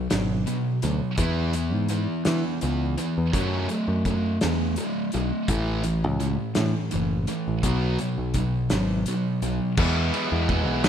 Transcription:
0.10 G#1 B2 F#3, snare, closed hi-hat
0.46 B2 F#3, closed hi-hat
0.82 D2 B2 F#3, closed hi-hat
1.17 E2 E3 B3 E4, kick, closed hi-hat
1.53 E3 B3, closed hi-hat
1.74 G#2
1.89 E3 B3, closed hi-hat
2.25 E3 B3, snare, closed hi-hat
2.61 C#2 E3 B3, closed hi-hat
2.97 E3 B3, closed hi-hat
3.18 E2
3.33 F#2 F#3 A3 C#4, kick, closed hi-hat
3.69 F#3 A3, closed hi-hat
3.88 F#2
4.05 F#3 A3, kick, closed hi-hat
4.41 E2 F#3 A3, snare, closed hi-hat
4.76 F#3 A3, closed hi-hat
5.12 B1 F#3 A3, closed hi-hat
5.48 A1 A2 E3 A3, kick, closed hi-hat
5.84 A2 E3, closed hi-hat
6.04 C#2
6.19 A2 E3, closed hi-hat
6.55 A2 E3, snare, closed hi-hat
6.91 F#1 A2 E3, closed hi-hat
7.27 A2 E3, closed hi-hat
7.48 A1
7.63 B1 B2 F#3 B3, kick, closed hi-hat
7.99 B2 F#3, closed hi-hat
8.18 B1
8.34 B2 F#3, kick, closed hi-hat
8.70 G#1 B2 F#3, snare, closed hi-hat
9.06 B2 F#3, closed hi-hat
9.42 B1 B2 F#3, closed hi-hat
9.77 E2 E3 G#3 B3 E4, kick, crash
10.13 E3 G#3 B3 E4, ride
10.32 E2
10.49 E3 G#3 B3 E4, kick, ride
10.68 B1
10.84 E3 G#3 B3, snare, ride

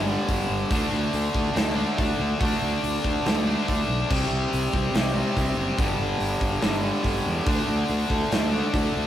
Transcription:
Already playing: G1 G2 D3 G3
0.07 G2 D3 G3
0.27 G1 G2 D3 G3, kick, open hi-hat
0.49 G1
0.70 D2 D3 A3 D4, kick, open hi-hat
0.93 D2
1.13 D2, open hi-hat
1.34 D2, kick
1.55 D2 D3 A3 D4, snare, open hi-hat
1.76 D3 A3 D4
1.97 D2 D3 A3 D4, kick, open hi-hat
2.19 D2
2.39 D2 D3 A3 D4, kick, open hi-hat
2.62 D2
2.83 D2, open hi-hat
3.04 D2, kick
3.25 D2 D3 A3 D4, snare, open hi-hat
3.46 D3 A3 D4
3.67 D2 D3 A3 D4, kick, open hi-hat
3.88 B1
4.09 C2 C3 G3 C4 G4 D5, kick, crash
4.30 C2
4.53 C2, open hi-hat
4.73 C2, kick
4.94 C2 C3 G3 C4, snare, open hi-hat
5.15 C3 G3 C4
5.36 C2 C3 G3 C4, kick, snare, open hi-hat
5.57 F#1
5.77 G1 G2 D3 G3 D4 A4, kick, open hi-hat
5.99 G1
6.20 G1, open hi-hat
6.41 G1, kick
6.61 G1 G2 D3 G3, snare, open hi-hat
6.83 G2 D3 G3
7.03 G1 G2 D3 G3, kick, snare, open hi-hat
7.26 E2
7.45 D2 D3 A3 D4 A4 E5, kick, open hi-hat
7.69 D2
7.88 D2, open hi-hat
8.10 D2, kick
8.31 D2 D3 A3 D4, snare, open hi-hat
8.52 D3 A3 D4
8.73 D2 D3 A3 D4, kick, open hi-hat
8.95 D2

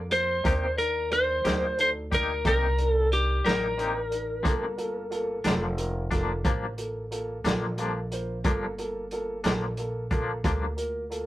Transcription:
Already playing: F2
0.09 A#3 F4 A#4 C5, closed hi-hat
0.43 D#2 C3 A#3 D4 D#4 G4 A#4, kick, closed hi-hat
0.76 D4 D#4 A#4, closed hi-hat
1.10 D4 D#4 A#4 C5, closed hi-hat
1.44 D2 A#3 D4 D#4 G4 A#4, snare, closed hi-hat
1.77 D4 D#4 A4 C5, closed hi-hat
2.10 A#3 D4 D#4 G4 A#4, kick, closed hi-hat
2.14 A#4
2.44 C2 C3 A#3 D4 D#4 G4 A#4, kick, closed hi-hat
2.77 D4 D#4 A#4, closed hi-hat
2.90 A4
3.11 D4 D#4 G4 A#4, closed hi-hat
3.44 A1 A#3 D4 D#4 G4 A#4, snare, closed hi-hat
3.77 C3 A#3 D4 D#4 G4 A#4, closed hi-hat
4.10 D4 D#4 A#4, closed hi-hat
4.43 G1 G2 F3 A#3 D4 F4 A4, kick, closed hi-hat
4.77 A#3 F4 A4, closed hi-hat
5.10 A#3 F4 A4, closed hi-hat
5.44 F1 F3 A#3 D4 F4 A4, snare, closed hi-hat
5.77 A#3 F4 A#4, closed hi-hat
6.11 F3 A#3 D4 F4 A4, kick, snare, closed hi-hat
6.44 A1 G2 F3 A#3 D4 F4 C5, kick, closed hi-hat
6.77 A#3 F4 A4, closed hi-hat
7.11 A#3 F4 A4, closed hi-hat
7.44 A#1 F3 A#3 D4 F4 A4, snare, closed hi-hat
7.78 G2 F3 A#3 D4 F4 A4, closed hi-hat
8.11 A#3 F4 C5, closed hi-hat
8.44 G1 G2 F3 A#3 D4 F4 A4, kick, closed hi-hat
8.78 A#3 F4 A4, closed hi-hat
9.11 A#3 F4 A4, closed hi-hat
9.44 A#1 F3 A#3 D4 F4 A4, snare, closed hi-hat
9.77 A#3 F4 A4, closed hi-hat
10.11 F3 A#3 D4 F4 A4, kick, closed hi-hat
10.44 D2 G2 F3 A#3 D4 F4 A4, kick, closed hi-hat
10.76 A#3 F4 A#4, closed hi-hat
11.10 A#3 F4 A4, closed hi-hat

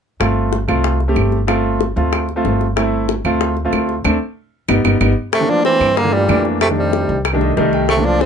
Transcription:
0.20 G1 A3 C4 F4, high bongo, claves
0.53 high bongo
0.68 C2 A3 C4 F4, high bongo, claves
0.84 high bongo
1.00 high bongo
1.08 A3 C4 G4
1.16 G1, high bongo, low bongo, claves
1.32 high bongo
1.47 A3 C4 F4, high bongo, claves
1.81 high bongo
1.96 D2 A3 C4 F4, high bongo
2.13 high bongo, claves
2.29 high bongo
2.36 A3 C4 F4
2.45 G1, high bongo, low bongo
2.61 high bongo
2.76 A3 C4 E4, high bongo, claves
3.09 high bongo
3.25 D2 A3 C4 F4, high bongo, claves
3.41 high bongo
3.57 high bongo
3.65 A3 C4 F4
3.73 D2, high bongo, low bongo, claves
3.89 high bongo
4.04 D2 A3 C4 D4, low bongo, claves
4.68 G1 G3 B3 D#4, low bongo, claves
4.84 G1 G3 B3 D#4, low bongo, claves
5.00 G1 G3 B3 D#4, low bongo, claves
5.33 C3 A3, high bongo, claves
5.40 E3 A3 A#3 D4
5.48 F3 D4
5.65 E3 C4, high bongo
5.80 G2, high bongo, claves
5.97 D3 A#3, high bongo
6.04 E3 A3 A#3 D4
6.13 A#2 G3, high bongo
6.28 F2 E3 A3 A#3 D4, high bongo, low bongo, claves
6.45 high bongo
6.61 C3 A3, high bongo, claves
6.69 D#3 G3 A3 D4
6.78 C3 G3
6.93 high bongo
7.09 C2, high bongo
7.25 high bongo, claves
7.33 D#3 G3 A3 D4
7.41 D#5, high bongo
7.57 C2 D#3 G3 A3 D#4 D5, high bongo, low bongo
7.73 G5, high bongo
7.89 C3 A3, high bongo, claves
7.97 E3 A3 A#3 D4
8.05 F3 D4
8.21 E3 C4, high bongo

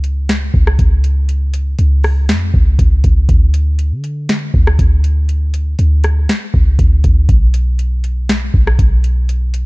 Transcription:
Already playing: C#2
0.04 closed hi-hat
0.29 snare, closed hi-hat
0.54 C#2, kick
0.67 cross-stick
0.79 C#2, kick, closed hi-hat
1.04 closed hi-hat
1.29 closed hi-hat
1.54 closed hi-hat
1.79 C#2, closed hi-hat
2.04 cross-stick, open hi-hat
2.29 F2, snare, closed hi-hat
2.54 C#2, kick
2.79 C#2, kick, closed hi-hat
3.04 C#2, kick, closed hi-hat
3.29 D2, kick, closed hi-hat
3.54 closed hi-hat
3.79 closed hi-hat
3.91 D3
4.04 closed hi-hat
4.29 snare, closed hi-hat
4.54 D2, kick
4.67 cross-stick
4.79 D2, kick, closed hi-hat
5.04 closed hi-hat
5.29 closed hi-hat
5.54 closed hi-hat
5.79 D2, closed hi-hat
6.04 cross-stick, closed hi-hat
6.29 snare, closed hi-hat
6.54 C#2, kick
6.79 D2, kick, closed hi-hat
7.04 D2, kick, closed hi-hat
7.29 B1, kick, closed hi-hat
7.54 closed hi-hat
7.79 closed hi-hat
8.04 closed hi-hat
8.29 snare, closed hi-hat
8.54 B1, kick
8.67 cross-stick
8.79 B1, kick, closed hi-hat
9.04 closed hi-hat
9.29 closed hi-hat
9.54 closed hi-hat

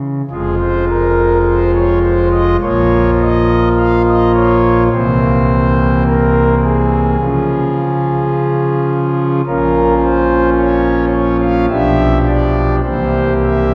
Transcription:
Already playing: C#3
0.31 F1 F2 F3 G#3 F4 G#4
0.60 C5
0.90 A#4
1.47 C5
1.75 C#5
2.05 C5
2.33 D#5
2.62 A#1 A#2 F3 A#3 F4 C#5
3.20 D#5
3.78 F5
4.08 D#5
4.35 C#5
4.92 C2 C3 E3 A#3 C4 C5
6.07 A#4
6.62 G#4
7.20 C#3 F3 C#4 F4
9.46 A#1 A#2 F3 C#4 F4 A#4
10.02 C5
10.58 C#5
11.13 C#5
11.41 F5
11.69 B1 B2 F3 D4 G4 E5
12.27 D5
12.83 C2 C3 E3 A#3 G4 C5
13.43 E5

